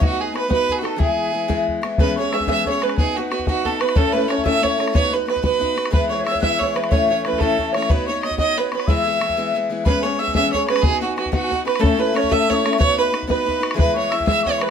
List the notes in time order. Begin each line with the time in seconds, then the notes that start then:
0.00 B3 D#4 F#4 B4 F#5, bodhran
0.19 G#4 G#5
0.32 B3 D#4 F#4 B4 B5, bodhran
0.37 B4
0.48 B3 D#4 F#4 B4 B5, bodhran
0.53 B4
0.69 G#4, bodhran
0.76 F#4 F#5
0.81 B3 D#4 F#4 A4 B4 A5, bodhran
0.86 A4
0.96 E3 G#3 B3 E4 G#4, bodhran
1.01 G#4 G#5
1.32 E3 G#3 B3 E4
1.48 E3 G#3 B3 E4, bodhran
1.68 bodhran
1.81 E3 G#3 B3 E4, bodhran
1.98 E3 G#3 B3 C#4 G#4 B4 B5, bodhran
2.16 G#3 B3 C#4 G#4 C#5 C#6
2.31 G#3 B3 C#4 G#4 E5 E6, bodhran
2.40 bodhran
2.46 E3 G#3 B3 C#4 G#4 E5 E6, bodhran
2.66 G#3 B3 C#4 G#4 C#5 C#6, bodhran
2.81 G#3 B3 C#4 G#4 B4 B5, bodhran
2.89 bodhran
2.97 B3 D#4 F#4 G#4 B4 G#5, bodhran
3.15 B3 D#4 F#4 F#5
3.19 F#4 B4
3.29 B3 D#4 F#4, bodhran
3.33 B4
3.39 bodhran
3.46 B3 D#4 F#4 F#5 G#5, bodhran
3.51 B4
3.65 B3 D#4 F#4 A4 B4 A5, bodhran
3.80 B3 D#4 F#4 B4 B5, bodhran
3.89 bodhran
3.95 A2 A3 C#4 E4 A4 A5, bodhran
4.12 A3 C#4 E4 A4 B4 B5
4.17 B4
4.28 A3 C#4 E4 A4 C#5 C#6, bodhran
4.32 C#5
4.38 bodhran
4.45 A2 A3 C#4 E4 A4 E5 E6, bodhran
4.61 A3 C#4 E4 A4 C#5 C#6, bodhran
4.77 A3 C#4 E4 A4, bodhran
4.88 bodhran
4.93 B3 D#4 F#4 B4 C#5 C#6, bodhran
5.11 B3 D#4 F#4 B4 B5
5.15 B4
5.28 B3 D#4 F#4 B4 B5, bodhran
5.36 bodhran
5.42 B3 D#4 F#4 B4 B5, bodhran
5.59 B3 D#4 F#4 B4, bodhran
5.76 B3 D#4 F#4 B4, bodhran
5.85 bodhran
5.91 E3 G#3 B3 E4 B4 B5, bodhran
6.09 E3 G#3 B3 E4 C#5 C#6
6.21 C#5
6.25 E3 G#3 B3 E4 E5 E6, bodhran
6.31 C#5, bodhran
6.41 E3 G#3 B3 E4 E5 E6 F#6, bodhran
6.59 E3 G#3 B3 E4 C#5 C#6, bodhran
6.74 E3 G#3 B3 E4 B4 B5, bodhran
6.84 bodhran
6.90 A2 E3 A3 C#4 E4 C#5 C#6, bodhran
7.08 E3 A3 C#4 C#5 C#6
7.13 E4
7.25 E3 A3 C#4 E4 B4 B5, bodhran
7.33 bodhran
7.38 A2 E3 A3 C#4 E4 A4 A5, bodhran
7.58 E3 A3 C#4 E4, bodhran
7.73 E3 A3 C#4 C#5 C#6, bodhran
7.77 E4
7.82 bodhran
7.89 B3 D#4 F#4 B4 C#5 B5, bodhran
8.06 B3 D#4 F#4 C#5 C#6
8.10 C#5
8.23 B3 D#4 F#4 D#5 D#6, bodhran
8.27 C#5
8.31 bodhran
8.38 B3 D#4 F#4 C#5 D#5 D#6, bodhran
8.57 B3 D#4 F#4 B4 C#5
8.71 B3 D#4 F#4 B4 C#5 B5, bodhran
8.80 bodhran
8.87 E3 G#3 B3 E4 E5 E6, bodhran
9.05 E3 G#3 B3 E4
9.20 E3 G#3 B3 E4, bodhran
9.29 bodhran
9.37 E3 G#3 B3 E4
9.54 E3 G#3 B3 E4
9.69 E3 G#3 B3 E4
9.85 E3 G#3 B3 C#4 G#4 B4 B5, bodhran
10.03 G#3 B3 C#4 G#4 C#5 C#6
10.19 G#3 B3 C#4 G#4 E5 E6
10.28 bodhran
10.35 E3 G#3 B3 C#4 G#4 E5 E6, bodhran
10.52 G#3 B3 C#4 G#4 C#5 C#6, bodhran
10.67 G#3 B3 C#4 G#4 B4 B5, bodhran
10.76 bodhran
10.82 B3 D#4 F#4 G#4 B4 G#5 B5, bodhran
10.86 G#4
11.01 B3 D#4 F#4 B4
11.17 B3 D#4 F#4 B4, bodhran
11.26 bodhran
11.32 B3 D#4 F#4 B4 F#5, bodhran
11.44 G#5
11.51 B3 D#4 F#4 B4, bodhran
11.57 F#5
11.65 B3 D#4 F#4 B4 B5, bodhran
11.76 A2 A3, bodhran
11.80 C#4 E4 A4 B5, bodhran
11.87 A5
11.97 A3 C#4 E4 A4 B4
12.01 B5
12.13 A3 C#4 E4 A4 C#5, bodhran
12.17 C#5 C#6
12.24 bodhran
12.29 A2 A3 C#4 E4 A4 E5 E6, bodhran
12.48 A3 C#4 E4 A4 C#5 D#6, bodhran
12.56 C#6
12.64 A3 C#4 E4 A4, bodhran
12.73 bodhran
12.78 B3 D#4 F#4 B4 C#5 C#6, bodhran
12.97 B3 D#4 F#4 B4 C#6
13.03 B5
13.12 B3 D#4 F#4 B4, bodhran
13.23 bodhran
13.27 B3 D#4 F#4 B4 B5, bodhran
13.46 B3 D#4 F#4 B4, bodhran
13.60 B3 D#4 F#4 B4, bodhran
13.71 E3, bodhran
13.76 G#3 B3 E4 B4 B5, bodhran
13.94 E3 G#3 B3 E4 C#5 C#6
13.98 C#5
14.10 E3 G#3 B3 E4 E5 E6, bodhran
14.20 bodhran
14.26 E3 G#3 B3 E4 E5 E6, bodhran
14.43 E3 G#3 B3 E4 C#5 C#6, bodhran
14.58 E3 G#3 B3 B4 B5, bodhran
14.63 B4